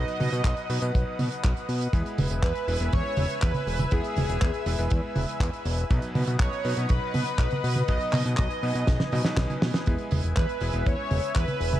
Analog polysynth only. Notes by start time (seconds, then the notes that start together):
Already playing: D#5
2.43 B4
2.93 C#5
3.42 B4
3.92 G#4
6.40 C#5
6.90 B4
7.89 D#5
8.39 D#5
10.36 B4
10.86 C#5
11.35 B4